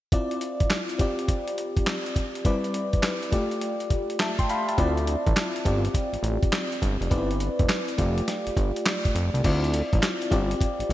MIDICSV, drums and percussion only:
0, 0, Header, 1, 2, 480
1, 0, Start_track
1, 0, Tempo, 582524
1, 99, Time_signature, 4, 2, 24, 8
1, 9009, End_track
2, 0, Start_track
2, 0, Title_t, "Drums"
2, 99, Note_on_c, 9, 36, 111
2, 102, Note_on_c, 9, 42, 73
2, 182, Note_off_c, 9, 36, 0
2, 184, Note_off_c, 9, 42, 0
2, 257, Note_on_c, 9, 42, 45
2, 339, Note_off_c, 9, 42, 0
2, 339, Note_on_c, 9, 42, 81
2, 421, Note_off_c, 9, 42, 0
2, 497, Note_on_c, 9, 42, 47
2, 499, Note_on_c, 9, 36, 95
2, 579, Note_off_c, 9, 42, 0
2, 579, Note_on_c, 9, 38, 97
2, 580, Note_on_c, 9, 42, 78
2, 581, Note_off_c, 9, 36, 0
2, 581, Note_on_c, 9, 39, 75
2, 661, Note_off_c, 9, 38, 0
2, 663, Note_off_c, 9, 39, 0
2, 663, Note_off_c, 9, 42, 0
2, 736, Note_on_c, 9, 42, 51
2, 818, Note_off_c, 9, 42, 0
2, 819, Note_on_c, 9, 36, 89
2, 819, Note_on_c, 9, 42, 67
2, 901, Note_off_c, 9, 36, 0
2, 901, Note_off_c, 9, 42, 0
2, 979, Note_on_c, 9, 42, 49
2, 1057, Note_on_c, 9, 36, 80
2, 1059, Note_off_c, 9, 42, 0
2, 1059, Note_on_c, 9, 42, 77
2, 1140, Note_off_c, 9, 36, 0
2, 1141, Note_off_c, 9, 42, 0
2, 1216, Note_on_c, 9, 42, 54
2, 1298, Note_off_c, 9, 42, 0
2, 1301, Note_on_c, 9, 42, 61
2, 1383, Note_off_c, 9, 42, 0
2, 1455, Note_on_c, 9, 36, 87
2, 1458, Note_on_c, 9, 42, 50
2, 1538, Note_off_c, 9, 36, 0
2, 1539, Note_off_c, 9, 42, 0
2, 1539, Note_on_c, 9, 38, 125
2, 1539, Note_on_c, 9, 42, 72
2, 1541, Note_on_c, 9, 39, 95
2, 1621, Note_off_c, 9, 38, 0
2, 1622, Note_off_c, 9, 42, 0
2, 1624, Note_off_c, 9, 39, 0
2, 1700, Note_on_c, 9, 42, 54
2, 1778, Note_on_c, 9, 36, 83
2, 1781, Note_off_c, 9, 42, 0
2, 1781, Note_on_c, 9, 42, 72
2, 1861, Note_off_c, 9, 36, 0
2, 1864, Note_off_c, 9, 42, 0
2, 1940, Note_on_c, 9, 42, 55
2, 2017, Note_on_c, 9, 36, 113
2, 2019, Note_off_c, 9, 42, 0
2, 2019, Note_on_c, 9, 42, 72
2, 2100, Note_off_c, 9, 36, 0
2, 2101, Note_off_c, 9, 42, 0
2, 2177, Note_on_c, 9, 42, 50
2, 2259, Note_off_c, 9, 42, 0
2, 2259, Note_on_c, 9, 42, 80
2, 2341, Note_off_c, 9, 42, 0
2, 2415, Note_on_c, 9, 42, 47
2, 2418, Note_on_c, 9, 36, 94
2, 2496, Note_on_c, 9, 38, 94
2, 2497, Note_off_c, 9, 42, 0
2, 2497, Note_on_c, 9, 42, 78
2, 2498, Note_on_c, 9, 39, 78
2, 2500, Note_off_c, 9, 36, 0
2, 2578, Note_off_c, 9, 38, 0
2, 2580, Note_off_c, 9, 39, 0
2, 2580, Note_off_c, 9, 42, 0
2, 2657, Note_on_c, 9, 42, 51
2, 2738, Note_on_c, 9, 36, 83
2, 2740, Note_off_c, 9, 42, 0
2, 2740, Note_on_c, 9, 42, 70
2, 2821, Note_off_c, 9, 36, 0
2, 2822, Note_off_c, 9, 42, 0
2, 2895, Note_on_c, 9, 42, 49
2, 2978, Note_off_c, 9, 42, 0
2, 2978, Note_on_c, 9, 42, 78
2, 3061, Note_off_c, 9, 42, 0
2, 3134, Note_on_c, 9, 42, 53
2, 3216, Note_off_c, 9, 42, 0
2, 3217, Note_on_c, 9, 36, 81
2, 3217, Note_on_c, 9, 42, 59
2, 3299, Note_off_c, 9, 36, 0
2, 3300, Note_off_c, 9, 42, 0
2, 3377, Note_on_c, 9, 42, 50
2, 3458, Note_off_c, 9, 42, 0
2, 3458, Note_on_c, 9, 38, 118
2, 3458, Note_on_c, 9, 42, 76
2, 3460, Note_on_c, 9, 39, 95
2, 3540, Note_off_c, 9, 38, 0
2, 3540, Note_off_c, 9, 42, 0
2, 3542, Note_off_c, 9, 39, 0
2, 3616, Note_on_c, 9, 36, 98
2, 3617, Note_on_c, 9, 42, 55
2, 3698, Note_off_c, 9, 36, 0
2, 3699, Note_off_c, 9, 42, 0
2, 3704, Note_on_c, 9, 42, 76
2, 3787, Note_off_c, 9, 42, 0
2, 3861, Note_on_c, 9, 42, 55
2, 3938, Note_on_c, 9, 36, 110
2, 3940, Note_off_c, 9, 42, 0
2, 3940, Note_on_c, 9, 42, 72
2, 4021, Note_off_c, 9, 36, 0
2, 4023, Note_off_c, 9, 42, 0
2, 4099, Note_on_c, 9, 42, 48
2, 4180, Note_off_c, 9, 42, 0
2, 4180, Note_on_c, 9, 42, 76
2, 4263, Note_off_c, 9, 42, 0
2, 4339, Note_on_c, 9, 36, 96
2, 4339, Note_on_c, 9, 42, 46
2, 4421, Note_off_c, 9, 36, 0
2, 4421, Note_off_c, 9, 42, 0
2, 4421, Note_on_c, 9, 38, 96
2, 4422, Note_on_c, 9, 42, 84
2, 4423, Note_on_c, 9, 39, 83
2, 4503, Note_off_c, 9, 38, 0
2, 4505, Note_off_c, 9, 39, 0
2, 4505, Note_off_c, 9, 42, 0
2, 4581, Note_on_c, 9, 42, 49
2, 4659, Note_on_c, 9, 36, 83
2, 4662, Note_off_c, 9, 42, 0
2, 4662, Note_on_c, 9, 42, 67
2, 4741, Note_off_c, 9, 36, 0
2, 4744, Note_off_c, 9, 42, 0
2, 4818, Note_on_c, 9, 42, 53
2, 4897, Note_on_c, 9, 36, 84
2, 4900, Note_off_c, 9, 42, 0
2, 4900, Note_on_c, 9, 42, 82
2, 4980, Note_off_c, 9, 36, 0
2, 4982, Note_off_c, 9, 42, 0
2, 5056, Note_on_c, 9, 42, 51
2, 5139, Note_off_c, 9, 42, 0
2, 5140, Note_on_c, 9, 42, 67
2, 5222, Note_off_c, 9, 42, 0
2, 5295, Note_on_c, 9, 36, 95
2, 5298, Note_on_c, 9, 42, 51
2, 5377, Note_off_c, 9, 36, 0
2, 5377, Note_off_c, 9, 42, 0
2, 5377, Note_on_c, 9, 38, 116
2, 5377, Note_on_c, 9, 42, 77
2, 5379, Note_on_c, 9, 39, 95
2, 5459, Note_off_c, 9, 38, 0
2, 5460, Note_off_c, 9, 42, 0
2, 5462, Note_off_c, 9, 39, 0
2, 5539, Note_on_c, 9, 42, 54
2, 5620, Note_on_c, 9, 36, 82
2, 5621, Note_off_c, 9, 42, 0
2, 5624, Note_on_c, 9, 42, 73
2, 5702, Note_off_c, 9, 36, 0
2, 5707, Note_off_c, 9, 42, 0
2, 5783, Note_on_c, 9, 42, 51
2, 5859, Note_on_c, 9, 36, 112
2, 5862, Note_off_c, 9, 42, 0
2, 5862, Note_on_c, 9, 42, 72
2, 5941, Note_off_c, 9, 36, 0
2, 5944, Note_off_c, 9, 42, 0
2, 6021, Note_on_c, 9, 42, 49
2, 6100, Note_off_c, 9, 42, 0
2, 6100, Note_on_c, 9, 42, 83
2, 6183, Note_off_c, 9, 42, 0
2, 6256, Note_on_c, 9, 42, 47
2, 6258, Note_on_c, 9, 36, 98
2, 6337, Note_on_c, 9, 38, 95
2, 6339, Note_off_c, 9, 42, 0
2, 6339, Note_on_c, 9, 39, 78
2, 6339, Note_on_c, 9, 42, 87
2, 6341, Note_off_c, 9, 36, 0
2, 6420, Note_off_c, 9, 38, 0
2, 6421, Note_off_c, 9, 42, 0
2, 6422, Note_off_c, 9, 39, 0
2, 6496, Note_on_c, 9, 42, 52
2, 6578, Note_off_c, 9, 42, 0
2, 6578, Note_on_c, 9, 36, 90
2, 6579, Note_on_c, 9, 42, 70
2, 6661, Note_off_c, 9, 36, 0
2, 6661, Note_off_c, 9, 42, 0
2, 6738, Note_on_c, 9, 42, 51
2, 6820, Note_off_c, 9, 42, 0
2, 6821, Note_on_c, 9, 38, 61
2, 6822, Note_on_c, 9, 42, 82
2, 6904, Note_off_c, 9, 38, 0
2, 6904, Note_off_c, 9, 42, 0
2, 6977, Note_on_c, 9, 42, 55
2, 7059, Note_off_c, 9, 42, 0
2, 7059, Note_on_c, 9, 36, 78
2, 7061, Note_on_c, 9, 42, 61
2, 7141, Note_off_c, 9, 36, 0
2, 7144, Note_off_c, 9, 42, 0
2, 7221, Note_on_c, 9, 42, 53
2, 7301, Note_off_c, 9, 42, 0
2, 7301, Note_on_c, 9, 38, 123
2, 7301, Note_on_c, 9, 42, 76
2, 7303, Note_on_c, 9, 39, 103
2, 7383, Note_off_c, 9, 38, 0
2, 7383, Note_off_c, 9, 42, 0
2, 7385, Note_off_c, 9, 39, 0
2, 7458, Note_on_c, 9, 36, 101
2, 7460, Note_on_c, 9, 42, 54
2, 7540, Note_off_c, 9, 36, 0
2, 7542, Note_off_c, 9, 42, 0
2, 7545, Note_on_c, 9, 42, 80
2, 7627, Note_off_c, 9, 42, 0
2, 7703, Note_on_c, 9, 42, 54
2, 7780, Note_on_c, 9, 36, 114
2, 7782, Note_off_c, 9, 42, 0
2, 7782, Note_on_c, 9, 42, 73
2, 7782, Note_on_c, 9, 49, 94
2, 7863, Note_off_c, 9, 36, 0
2, 7864, Note_off_c, 9, 49, 0
2, 7865, Note_off_c, 9, 42, 0
2, 7945, Note_on_c, 9, 42, 51
2, 8023, Note_off_c, 9, 42, 0
2, 8023, Note_on_c, 9, 42, 86
2, 8105, Note_off_c, 9, 42, 0
2, 8181, Note_on_c, 9, 36, 102
2, 8184, Note_on_c, 9, 42, 48
2, 8262, Note_on_c, 9, 38, 104
2, 8263, Note_off_c, 9, 36, 0
2, 8263, Note_off_c, 9, 42, 0
2, 8263, Note_on_c, 9, 42, 89
2, 8264, Note_on_c, 9, 39, 76
2, 8344, Note_off_c, 9, 38, 0
2, 8346, Note_off_c, 9, 39, 0
2, 8346, Note_off_c, 9, 42, 0
2, 8420, Note_on_c, 9, 42, 47
2, 8499, Note_on_c, 9, 36, 88
2, 8501, Note_off_c, 9, 42, 0
2, 8501, Note_on_c, 9, 42, 71
2, 8582, Note_off_c, 9, 36, 0
2, 8584, Note_off_c, 9, 42, 0
2, 8661, Note_on_c, 9, 42, 57
2, 8740, Note_on_c, 9, 36, 88
2, 8744, Note_off_c, 9, 42, 0
2, 8745, Note_on_c, 9, 42, 79
2, 8822, Note_off_c, 9, 36, 0
2, 8828, Note_off_c, 9, 42, 0
2, 8901, Note_on_c, 9, 42, 51
2, 8984, Note_off_c, 9, 42, 0
2, 9009, End_track
0, 0, End_of_file